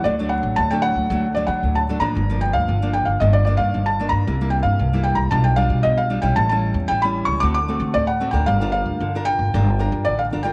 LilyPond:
<<
  \new Staff \with { instrumentName = "Felt piano" } { \time 4/4 \key g \minor \tempo 4 = 114 d''8 fis''8 a''16 g''16 fis''4 d''16 fis''8 a''8 bes''16~ | bes''8 g''16 f''8. g''16 f''16 ees''16 d''16 d''16 f''8 a''8 bes''16~ | bes''8 g''16 f''8. g''16 bes''16 a''16 g''16 f''8 ees''16 f''8 g''16 | a''16 a''8 r16 g''16 b''8 cis'''16 d'''16 d'''8 r16 d''16 fis''8 g''16 |
f''8 f''4 g''4. d''16 f''8 g''16 | }
  \new Staff \with { instrumentName = "Nylon-string guitar" } { \time 4/4 \key g \minor << { <fis a d'>16 <fis a d'>4 <fis a d'>8. <fis a d'>16 r16 <fis a d'>4 <fis a d'>16 <f bes d'>16~ | <f bes d'>16 <f bes d'>4 <f bes d'>8. <ees bes d'>8 <ees bes d'>8. r16 <ees bes d'>8 | <g bes e'>16 <g bes e'>4 <g bes e'>8. <g d' f'>8 <g d' f'>4 <g d' f'>16 <g cis' e'>16~ | <g cis' e'>16 <g cis' e'>4 <g cis' e'>8. <a c' fis'>16 r16 <a c' fis'>8. r16 <a c' fis'>16 <d' f' bes'>16~ |
<d' f' bes'>16 <d' f' bes'>4 <d' f' bes'>8. <d' f' bes'>16 r16 <d' f' bes'>8. r16 <d' f' bes'>16 <d' f' bes'>16 | } \\ { d4 a,4 d4 a,4 | g,4 d4 g,4 g,4 | c4 g,4 b,4 b,4 | a,4 e4 d4 a,4 |
g4 d4 g4 d4 | } >> }
  \new Staff \with { instrumentName = "Upright bass" } { \clef bass \time 4/4 \key g \minor d,8. a,,16 d,8. d,16 d,8. d16 d,8. a,,16 | g,,8. d,16 g,,8. g,,16 g,,8. g,16 g,,8. g,16 | c,8. g,16 c,8. c,16 b,,8. b,16 b,,8. b,,16 | a,,8. e,16 a,,8. cis,16 d,8. d16 d,8. d,16 |
g,,8. d,16 g,,8. g,,16 g,,8. g,16 a,,8 g,,8 | }
>>